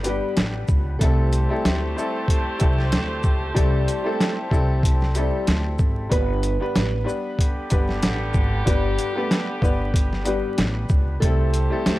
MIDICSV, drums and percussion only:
0, 0, Header, 1, 2, 480
1, 0, Start_track
1, 0, Key_signature, 1, "major"
1, 0, Tempo, 638298
1, 758, Time_signature, 4, 2, 24, 8
1, 9017, End_track
2, 0, Start_track
2, 0, Title_t, "Drums"
2, 32, Note_on_c, 9, 42, 62
2, 32, Note_on_c, 9, 82, 59
2, 107, Note_off_c, 9, 42, 0
2, 107, Note_off_c, 9, 82, 0
2, 275, Note_on_c, 9, 42, 74
2, 280, Note_on_c, 9, 38, 121
2, 351, Note_off_c, 9, 42, 0
2, 355, Note_off_c, 9, 38, 0
2, 510, Note_on_c, 9, 82, 49
2, 516, Note_on_c, 9, 36, 105
2, 585, Note_off_c, 9, 82, 0
2, 591, Note_off_c, 9, 36, 0
2, 759, Note_on_c, 9, 36, 123
2, 761, Note_on_c, 9, 42, 110
2, 834, Note_off_c, 9, 36, 0
2, 836, Note_off_c, 9, 42, 0
2, 998, Note_on_c, 9, 42, 61
2, 998, Note_on_c, 9, 82, 61
2, 1073, Note_off_c, 9, 42, 0
2, 1073, Note_off_c, 9, 82, 0
2, 1242, Note_on_c, 9, 38, 114
2, 1247, Note_on_c, 9, 42, 72
2, 1317, Note_off_c, 9, 38, 0
2, 1322, Note_off_c, 9, 42, 0
2, 1489, Note_on_c, 9, 82, 50
2, 1564, Note_off_c, 9, 82, 0
2, 1715, Note_on_c, 9, 36, 109
2, 1730, Note_on_c, 9, 42, 99
2, 1791, Note_off_c, 9, 36, 0
2, 1805, Note_off_c, 9, 42, 0
2, 1953, Note_on_c, 9, 42, 61
2, 1953, Note_on_c, 9, 82, 60
2, 1965, Note_on_c, 9, 36, 113
2, 2028, Note_off_c, 9, 42, 0
2, 2028, Note_off_c, 9, 82, 0
2, 2040, Note_off_c, 9, 36, 0
2, 2094, Note_on_c, 9, 38, 35
2, 2169, Note_off_c, 9, 38, 0
2, 2197, Note_on_c, 9, 42, 76
2, 2201, Note_on_c, 9, 38, 115
2, 2272, Note_off_c, 9, 42, 0
2, 2277, Note_off_c, 9, 38, 0
2, 2430, Note_on_c, 9, 82, 50
2, 2436, Note_on_c, 9, 36, 107
2, 2506, Note_off_c, 9, 82, 0
2, 2511, Note_off_c, 9, 36, 0
2, 2679, Note_on_c, 9, 36, 124
2, 2681, Note_on_c, 9, 42, 107
2, 2755, Note_off_c, 9, 36, 0
2, 2756, Note_off_c, 9, 42, 0
2, 2918, Note_on_c, 9, 42, 62
2, 2918, Note_on_c, 9, 82, 61
2, 2993, Note_off_c, 9, 42, 0
2, 2993, Note_off_c, 9, 82, 0
2, 3162, Note_on_c, 9, 38, 120
2, 3167, Note_on_c, 9, 42, 73
2, 3237, Note_off_c, 9, 38, 0
2, 3242, Note_off_c, 9, 42, 0
2, 3395, Note_on_c, 9, 36, 104
2, 3408, Note_on_c, 9, 82, 50
2, 3470, Note_off_c, 9, 36, 0
2, 3484, Note_off_c, 9, 82, 0
2, 3635, Note_on_c, 9, 36, 106
2, 3649, Note_on_c, 9, 42, 101
2, 3710, Note_off_c, 9, 36, 0
2, 3724, Note_off_c, 9, 42, 0
2, 3777, Note_on_c, 9, 38, 34
2, 3852, Note_off_c, 9, 38, 0
2, 3872, Note_on_c, 9, 42, 59
2, 3872, Note_on_c, 9, 82, 60
2, 3948, Note_off_c, 9, 42, 0
2, 3948, Note_off_c, 9, 82, 0
2, 4116, Note_on_c, 9, 42, 74
2, 4120, Note_on_c, 9, 38, 120
2, 4191, Note_off_c, 9, 42, 0
2, 4195, Note_off_c, 9, 38, 0
2, 4350, Note_on_c, 9, 82, 48
2, 4355, Note_on_c, 9, 36, 103
2, 4425, Note_off_c, 9, 82, 0
2, 4431, Note_off_c, 9, 36, 0
2, 4598, Note_on_c, 9, 36, 123
2, 4600, Note_on_c, 9, 42, 106
2, 4674, Note_off_c, 9, 36, 0
2, 4675, Note_off_c, 9, 42, 0
2, 4836, Note_on_c, 9, 42, 60
2, 4836, Note_on_c, 9, 82, 60
2, 4912, Note_off_c, 9, 42, 0
2, 4912, Note_off_c, 9, 82, 0
2, 5081, Note_on_c, 9, 38, 117
2, 5086, Note_on_c, 9, 42, 72
2, 5156, Note_off_c, 9, 38, 0
2, 5161, Note_off_c, 9, 42, 0
2, 5327, Note_on_c, 9, 82, 50
2, 5403, Note_off_c, 9, 82, 0
2, 5554, Note_on_c, 9, 36, 106
2, 5569, Note_on_c, 9, 42, 100
2, 5630, Note_off_c, 9, 36, 0
2, 5644, Note_off_c, 9, 42, 0
2, 5792, Note_on_c, 9, 42, 61
2, 5792, Note_on_c, 9, 82, 62
2, 5805, Note_on_c, 9, 36, 109
2, 5867, Note_off_c, 9, 42, 0
2, 5867, Note_off_c, 9, 82, 0
2, 5880, Note_off_c, 9, 36, 0
2, 5932, Note_on_c, 9, 38, 36
2, 6008, Note_off_c, 9, 38, 0
2, 6035, Note_on_c, 9, 42, 75
2, 6040, Note_on_c, 9, 38, 115
2, 6110, Note_off_c, 9, 42, 0
2, 6115, Note_off_c, 9, 38, 0
2, 6269, Note_on_c, 9, 82, 49
2, 6275, Note_on_c, 9, 36, 107
2, 6344, Note_off_c, 9, 82, 0
2, 6350, Note_off_c, 9, 36, 0
2, 6519, Note_on_c, 9, 36, 124
2, 6520, Note_on_c, 9, 42, 109
2, 6594, Note_off_c, 9, 36, 0
2, 6595, Note_off_c, 9, 42, 0
2, 6757, Note_on_c, 9, 42, 59
2, 6757, Note_on_c, 9, 82, 60
2, 6832, Note_off_c, 9, 42, 0
2, 6832, Note_off_c, 9, 82, 0
2, 7000, Note_on_c, 9, 38, 116
2, 7005, Note_on_c, 9, 42, 72
2, 7075, Note_off_c, 9, 38, 0
2, 7080, Note_off_c, 9, 42, 0
2, 7234, Note_on_c, 9, 36, 104
2, 7248, Note_on_c, 9, 82, 47
2, 7310, Note_off_c, 9, 36, 0
2, 7323, Note_off_c, 9, 82, 0
2, 7474, Note_on_c, 9, 36, 105
2, 7488, Note_on_c, 9, 42, 100
2, 7550, Note_off_c, 9, 36, 0
2, 7563, Note_off_c, 9, 42, 0
2, 7616, Note_on_c, 9, 38, 36
2, 7691, Note_off_c, 9, 38, 0
2, 7712, Note_on_c, 9, 42, 61
2, 7712, Note_on_c, 9, 82, 60
2, 7787, Note_off_c, 9, 42, 0
2, 7787, Note_off_c, 9, 82, 0
2, 7955, Note_on_c, 9, 42, 75
2, 7959, Note_on_c, 9, 38, 118
2, 8030, Note_off_c, 9, 42, 0
2, 8035, Note_off_c, 9, 38, 0
2, 8189, Note_on_c, 9, 82, 51
2, 8195, Note_on_c, 9, 36, 108
2, 8264, Note_off_c, 9, 82, 0
2, 8270, Note_off_c, 9, 36, 0
2, 8438, Note_on_c, 9, 36, 127
2, 8439, Note_on_c, 9, 42, 108
2, 8513, Note_off_c, 9, 36, 0
2, 8514, Note_off_c, 9, 42, 0
2, 8675, Note_on_c, 9, 42, 59
2, 8675, Note_on_c, 9, 82, 60
2, 8750, Note_off_c, 9, 42, 0
2, 8750, Note_off_c, 9, 82, 0
2, 8920, Note_on_c, 9, 38, 117
2, 8925, Note_on_c, 9, 42, 73
2, 8995, Note_off_c, 9, 38, 0
2, 9000, Note_off_c, 9, 42, 0
2, 9017, End_track
0, 0, End_of_file